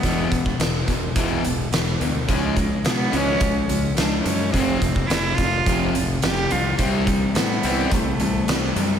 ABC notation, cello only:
X:1
M:4/4
L:1/8
Q:1/4=106
K:Emix
V:1 name="Cello"
B,2 z6 | G,2 B, C2 z D C | =C2 E =F2 z =G F | =G,2 B,2 A,3 G, |]